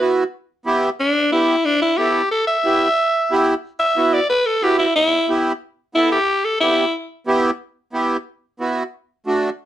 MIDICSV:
0, 0, Header, 1, 3, 480
1, 0, Start_track
1, 0, Key_signature, 1, "minor"
1, 0, Tempo, 330579
1, 1445, Time_signature, 4, 2, 24, 8
1, 14018, End_track
2, 0, Start_track
2, 0, Title_t, "Alto saxophone"
2, 0, Program_c, 0, 65
2, 1446, Note_on_c, 0, 62, 90
2, 1911, Note_off_c, 0, 62, 0
2, 1922, Note_on_c, 0, 64, 81
2, 2395, Note_on_c, 0, 62, 94
2, 2417, Note_off_c, 0, 64, 0
2, 2628, Note_off_c, 0, 62, 0
2, 2637, Note_on_c, 0, 64, 84
2, 2872, Note_on_c, 0, 67, 84
2, 2894, Note_off_c, 0, 64, 0
2, 3342, Note_off_c, 0, 67, 0
2, 3359, Note_on_c, 0, 69, 83
2, 3581, Note_off_c, 0, 69, 0
2, 3590, Note_on_c, 0, 76, 107
2, 4992, Note_off_c, 0, 76, 0
2, 5512, Note_on_c, 0, 76, 99
2, 6002, Note_on_c, 0, 74, 85
2, 6024, Note_off_c, 0, 76, 0
2, 6230, Note_off_c, 0, 74, 0
2, 6239, Note_on_c, 0, 71, 93
2, 6476, Note_on_c, 0, 69, 83
2, 6498, Note_off_c, 0, 71, 0
2, 6724, Note_on_c, 0, 67, 93
2, 6746, Note_off_c, 0, 69, 0
2, 6945, Note_off_c, 0, 67, 0
2, 6954, Note_on_c, 0, 64, 89
2, 7190, Note_off_c, 0, 64, 0
2, 7198, Note_on_c, 0, 64, 114
2, 7665, Note_off_c, 0, 64, 0
2, 8640, Note_on_c, 0, 64, 93
2, 8873, Note_off_c, 0, 64, 0
2, 8882, Note_on_c, 0, 67, 93
2, 9358, Note_on_c, 0, 69, 85
2, 9380, Note_off_c, 0, 67, 0
2, 9582, Note_off_c, 0, 69, 0
2, 9591, Note_on_c, 0, 64, 102
2, 10062, Note_off_c, 0, 64, 0
2, 14018, End_track
3, 0, Start_track
3, 0, Title_t, "Accordion"
3, 0, Program_c, 1, 21
3, 0, Note_on_c, 1, 59, 70
3, 1, Note_on_c, 1, 64, 68
3, 6, Note_on_c, 1, 66, 82
3, 336, Note_off_c, 1, 59, 0
3, 340, Note_off_c, 1, 64, 0
3, 343, Note_off_c, 1, 66, 0
3, 953, Note_on_c, 1, 59, 92
3, 961, Note_on_c, 1, 64, 81
3, 964, Note_on_c, 1, 67, 97
3, 1295, Note_off_c, 1, 59, 0
3, 1299, Note_off_c, 1, 64, 0
3, 1300, Note_off_c, 1, 67, 0
3, 1916, Note_on_c, 1, 59, 69
3, 1924, Note_on_c, 1, 64, 65
3, 1931, Note_on_c, 1, 67, 78
3, 2256, Note_off_c, 1, 59, 0
3, 2260, Note_off_c, 1, 64, 0
3, 2263, Note_off_c, 1, 67, 0
3, 2877, Note_on_c, 1, 59, 73
3, 2885, Note_on_c, 1, 64, 67
3, 2891, Note_on_c, 1, 69, 78
3, 3216, Note_off_c, 1, 59, 0
3, 3220, Note_off_c, 1, 64, 0
3, 3223, Note_off_c, 1, 69, 0
3, 3840, Note_on_c, 1, 59, 70
3, 3845, Note_on_c, 1, 64, 66
3, 3854, Note_on_c, 1, 67, 79
3, 4177, Note_off_c, 1, 59, 0
3, 4179, Note_off_c, 1, 64, 0
3, 4184, Note_off_c, 1, 67, 0
3, 4807, Note_on_c, 1, 59, 82
3, 4812, Note_on_c, 1, 64, 79
3, 4818, Note_on_c, 1, 67, 98
3, 5140, Note_off_c, 1, 59, 0
3, 5142, Note_off_c, 1, 64, 0
3, 5146, Note_off_c, 1, 67, 0
3, 5757, Note_on_c, 1, 59, 74
3, 5763, Note_on_c, 1, 64, 69
3, 5769, Note_on_c, 1, 66, 82
3, 6095, Note_off_c, 1, 59, 0
3, 6098, Note_off_c, 1, 64, 0
3, 6101, Note_off_c, 1, 66, 0
3, 6714, Note_on_c, 1, 59, 76
3, 6720, Note_on_c, 1, 64, 69
3, 6726, Note_on_c, 1, 66, 78
3, 7053, Note_off_c, 1, 59, 0
3, 7056, Note_off_c, 1, 64, 0
3, 7059, Note_off_c, 1, 66, 0
3, 7680, Note_on_c, 1, 59, 77
3, 7687, Note_on_c, 1, 64, 69
3, 7691, Note_on_c, 1, 67, 87
3, 8016, Note_off_c, 1, 59, 0
3, 8020, Note_off_c, 1, 64, 0
3, 8022, Note_off_c, 1, 67, 0
3, 8636, Note_on_c, 1, 59, 72
3, 8643, Note_on_c, 1, 64, 69
3, 8650, Note_on_c, 1, 69, 78
3, 8974, Note_off_c, 1, 59, 0
3, 8978, Note_off_c, 1, 64, 0
3, 8981, Note_off_c, 1, 69, 0
3, 9600, Note_on_c, 1, 59, 78
3, 9605, Note_on_c, 1, 64, 73
3, 9612, Note_on_c, 1, 67, 81
3, 9937, Note_off_c, 1, 59, 0
3, 9939, Note_off_c, 1, 64, 0
3, 9943, Note_off_c, 1, 67, 0
3, 10554, Note_on_c, 1, 59, 89
3, 10562, Note_on_c, 1, 64, 82
3, 10564, Note_on_c, 1, 67, 105
3, 10894, Note_off_c, 1, 59, 0
3, 10898, Note_off_c, 1, 64, 0
3, 10899, Note_off_c, 1, 67, 0
3, 11513, Note_on_c, 1, 59, 71
3, 11519, Note_on_c, 1, 64, 69
3, 11526, Note_on_c, 1, 67, 86
3, 11855, Note_off_c, 1, 59, 0
3, 11858, Note_off_c, 1, 64, 0
3, 11861, Note_off_c, 1, 67, 0
3, 12484, Note_on_c, 1, 59, 80
3, 12492, Note_on_c, 1, 64, 67
3, 12494, Note_on_c, 1, 66, 79
3, 12822, Note_off_c, 1, 59, 0
3, 12826, Note_off_c, 1, 64, 0
3, 12827, Note_off_c, 1, 66, 0
3, 13450, Note_on_c, 1, 57, 80
3, 13457, Note_on_c, 1, 62, 72
3, 13459, Note_on_c, 1, 66, 88
3, 13787, Note_off_c, 1, 57, 0
3, 13790, Note_off_c, 1, 62, 0
3, 13791, Note_off_c, 1, 66, 0
3, 14018, End_track
0, 0, End_of_file